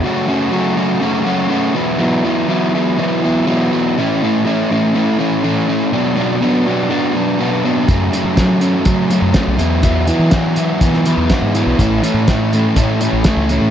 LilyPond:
<<
  \new Staff \with { instrumentName = "Overdriven electric guitar" } { \time 4/4 \key a \major \tempo 4 = 123 <fis, cis fis a cis' fis'>8 <fis, cis fis a cis' fis'>8 <fis, cis fis a cis' fis'>8 <fis, cis fis a cis' fis'>8 <fis, cis fis a cis' fis'>8 <fis, cis fis a cis' fis'>8 <fis, cis fis a cis' fis'>8 <e fis b e'>8 | <e fis b e'>8 <e fis b e'>8 <e fis b e'>8 <e fis b e'>8 <e fis b e'>8 <e fis b e'>8 <e fis b e'>8 <e fis b e'>8 | <a, e a cis' e'>8 <a, e a cis' e'>8 <a, e a cis' e'>8 <a, e a cis' e'>8 <a, e a cis' e'>8 <a, e a cis' e'>8 <a, e a cis' e'>8 <a, e a cis' e'>8 | <b, fis b d'>8 <b, fis b d'>8 <b, fis b d'>8 <b, fis b d'>8 <b, fis b d'>8 <b, fis b d'>8 <b, fis b d'>8 <b, fis b d'>8 |
<fis, cis fis a cis'>8 <fis, cis fis a cis'>8 <fis, cis fis a cis'>8 <fis, cis fis a cis'>8 <fis, cis fis a cis'>8 <fis, cis fis a cis'>8 <fis, cis fis a cis'>8 <e fis b e'>8 | <e fis b e'>8 <e fis b e'>8 <e fis b e'>8 <e fis b e'>8 <e fis b e'>8 <e fis b e'>8 <e fis b e'>8 <e fis b e'>8 | <a, e a cis' e'>8 <a, e a cis' e'>8 <a, e a cis' e'>8 <a, e a cis' e'>8 <a, e a cis' e'>8 <a, e a cis' e'>8 <a, e a cis' e'>8 <a, e a cis' e'>8 | }
  \new Staff \with { instrumentName = "Fingered electric bass" } { \clef bass \time 4/4 \key a \major r1 | r1 | r1 | r1 |
fis,8 r16 fis4~ fis16 fis8. fis,16 r16 b,,16 e,8~ | e,8. e4~ e16 e8. e,16 r16 gis,8 b,,16 | a,,8 r16 a,4~ a,16 a,8. a,,16 r16 cis,8 a,16 | }
  \new DrumStaff \with { instrumentName = "Drums" } \drummode { \time 4/4 r4 r4 r4 r4 | r4 r4 r4 r4 | r4 r4 r4 r4 | r4 r4 r4 r4 |
<hh bd>8 hh8 <hh bd sn>8 hh8 <hh bd>8 hh8 <hh bd sn>8 hh8 | <hh bd>8 hh8 <hh bd sn>8 hh8 <hh bd>16 sn16 hh8 <hh bd sn>8 hh8 | <hh bd>8 hh8 <hh bd sn>8 hh8 <hh bd>8 hh8 <hh bd sn>8 hh8 | }
>>